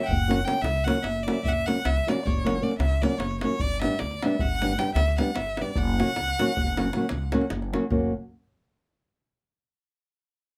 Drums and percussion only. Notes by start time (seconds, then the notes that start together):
0.11 davul low
0.31 davul high
0.48 davul high
0.57 davul high
0.64 davul high
0.76 davul high
0.88 davul high
0.95 davul high
1.04 davul high
1.16 davul high
1.28 davul high
1.45 davul low
1.68 davul high
1.85 davul high
1.97 davul high
2.08 davul high
2.27 davul low
2.47 davul high
2.71 davul high
2.80 davul high
2.91 davul high
3.03 davul high
3.12 davul high
3.20 davul high
3.31 davul high
3.41 davul high
3.60 davul low
3.82 davul high
3.99 davul high
4.11 davul high
4.22 davul high
4.39 davul low
4.62 davul high
4.79 davul high
4.88 davul high
4.96 davul high
5.08 davul high
5.18 davul high
5.36 davul high
5.46 davul high
5.57 davul high
5.76 davul low
6.00 davul high
6.07 davul high
6.16 davul high
6.28 davul high
6.39 davul high
6.57 davul low
6.67 davul high
6.77 davul high
6.85 davul high
6.93 davul high
7.02 davul high
7.09 davul high
7.32 davul high
7.42 davul high
7.50 davul high
7.62 davul high
7.74 davul high
7.92 davul low